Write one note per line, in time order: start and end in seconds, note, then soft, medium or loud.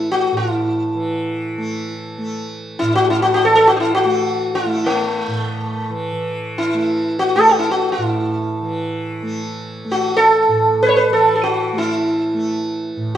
0.00 0.32 A2 medium
0.00 0.94 E3 medium
0.00 1.58 A3 medium
0.00 0.11 E4 medium
0.12 0.37 F#4 medium
0.32 2.81 A2 medium
0.37 0.52 F4 medium
0.52 1.92 E4 medium
0.95 3.43 E3 medium
1.58 2.18 A3 medium
2.18 4.04 A3 medium
2.79 5.27 A2 medium
2.79 2.95 E4 medium
2.95 3.10 F#4 medium
3.10 3.22 E4 medium
3.22 3.33 F#4 medium
3.34 3.45 F#4 medium
3.44 5.89 E3 medium
3.44 3.54 A4 medium
3.55 3.68 A4 medium
3.67 3.75 F#4 medium
3.76 3.94 E4 medium
3.76 3.80 F#4 medium
3.95 4.55 F#4 medium
4.04 4.66 A3 medium
4.55 4.88 E4 medium
4.66 6.74 A3 medium
4.86 5.92 A3 medium
5.28 7.98 A2 medium
5.90 6.12 E3 medium
6.12 8.62 E3 soft
6.58 7.15 E4 medium
6.74 7.35 A3 soft
7.19 7.36 F#4 medium
7.35 9.22 A3 medium
7.35 7.49 A4 medium
7.49 7.59 F#4 medium
7.59 7.71 E4 medium
7.71 7.90 F#4 medium
7.92 8.07 F4 medium
7.98 10.48 A2 medium
8.07 9.40 E4 medium
8.62 11.09 E3 medium
9.22 9.85 A3 medium
9.85 11.72 A3 medium
9.92 10.17 F#4 medium
10.17 10.82 A4 medium
10.48 12.96 A2 medium
10.83 10.89 B4 medium
10.89 10.96 C#5 medium
10.97 11.13 B4 medium
11.10 13.17 E3 medium
11.10 11.34 A4 medium
11.36 11.42 A4 medium
11.44 11.78 F#4 medium
11.72 12.34 A3 medium
11.78 13.14 E4 medium
12.34 13.17 A3 medium
12.97 13.17 A2 medium